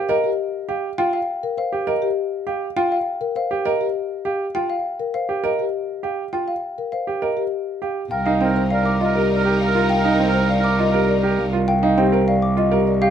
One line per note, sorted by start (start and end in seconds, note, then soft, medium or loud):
0.00 0.14 G4 medium
0.09 0.29 A#4 medium
0.09 0.29 D#5 medium
0.24 0.43 G4 medium
0.69 0.88 G4 medium
0.69 0.88 F5 medium
0.98 1.18 F4 medium
0.98 1.18 F5 medium
0.98 1.18 G5 medium
1.13 1.33 F5 medium
1.43 1.62 A#4 medium
1.58 1.77 C5 medium
1.58 1.77 F5 medium
1.73 1.92 G4 medium
1.87 2.07 A#4 medium
1.87 2.07 D#5 medium
2.02 2.22 G4 medium
2.47 2.66 G4 medium
2.47 2.66 F5 medium
2.76 2.96 F4 medium
2.76 2.96 F5 medium
2.76 2.96 G5 medium
2.92 3.11 F5 medium
3.21 3.40 A#4 medium
3.36 3.55 C5 medium
3.36 3.55 F5 medium
3.51 3.70 G4 medium
3.65 3.85 A#4 medium
3.65 3.85 D#5 medium
3.81 4.00 G4 medium
4.25 4.45 G4 medium
4.25 4.44 F5 medium
4.55 4.74 F4 medium
4.55 4.74 F5 medium
4.55 4.74 G5 medium
4.70 4.89 F5 medium
5.00 5.19 A#4 medium
5.14 5.34 C5 medium
5.14 5.34 F5 medium
5.29 5.48 G4 medium
5.44 5.63 A#4 medium
5.44 5.63 D#5 medium
5.59 5.78 G4 medium
6.03 6.23 G4 medium
6.03 6.23 F5 medium
6.33 6.52 F4 medium
6.33 6.53 F5 medium
6.33 6.52 G5 medium
6.48 6.67 F5 medium
6.78 6.97 A#4 medium
6.92 7.12 C5 medium
6.92 7.12 F5 medium
7.07 7.27 G4 medium
7.22 7.42 A#4 medium
7.22 7.42 D#5 medium
7.37 7.56 G4 medium
7.82 8.01 G4 medium
7.82 8.01 F5 soft
8.11 13.10 C2 medium
8.11 11.49 D#4 medium
8.11 11.49 A#4 medium
8.11 8.33 A#4 soft
8.11 8.31 F5 medium
8.11 8.31 G5 medium
8.26 8.46 D#4 medium
8.26 8.45 F5 medium
8.41 8.60 C4 medium
8.41 8.64 A#4 soft
8.41 8.60 G5 medium
8.56 8.75 C5 medium
8.71 8.95 A#4 medium
8.71 8.90 D5 medium
8.71 8.90 F5 medium
8.85 9.05 D6 medium
9.01 9.20 F4 medium
9.01 9.20 D#5 medium
9.05 9.26 A#4 medium
9.16 9.35 G4 medium
9.16 9.35 A#4 medium
9.31 9.50 D5 medium
9.36 9.57 A#4 medium
9.45 9.64 G4 medium
9.60 9.79 F5 medium
9.66 9.88 A#4 medium
9.75 9.94 F4 medium
9.75 9.94 A#4 medium
9.89 10.09 F5 medium
9.89 10.09 G5 medium
9.98 10.19 A#4 medium
10.04 10.24 D#4 medium
10.04 10.24 F5 medium
10.19 10.39 C4 medium
10.19 10.39 G5 medium
10.29 10.51 A#4 medium
10.34 10.53 C5 medium
10.49 10.69 D5 medium
10.49 10.68 F5 medium
10.60 10.82 A#4 medium
10.60 10.83 D6 medium
10.79 10.98 F4 medium
10.79 10.98 D#5 medium
10.91 11.13 G4 medium
10.91 11.13 A#4 soft
10.91 11.13 A#4 medium
11.08 11.28 D5 medium
11.22 11.43 G4 medium
11.22 11.44 A#4 soft
11.38 11.57 F5 medium
11.53 11.72 F4 medium
11.53 11.72 A#4 medium
11.68 11.87 F5 medium
11.68 11.87 G5 medium
11.83 12.02 D#4 medium
11.83 12.02 F5 medium
11.98 12.17 C4 medium
11.98 12.17 G4 medium
11.98 12.17 G5 medium
12.12 12.32 A#4 medium
12.12 12.32 C5 medium
12.28 12.47 D5 medium
12.28 12.47 F5 medium
12.42 12.62 D6 medium
12.57 12.76 F4 medium
12.57 12.77 D#5 medium
12.72 12.91 G4 medium
12.72 12.91 A#4 medium
12.87 13.06 D5 medium
13.02 13.10 G4 medium
13.02 13.10 F5 medium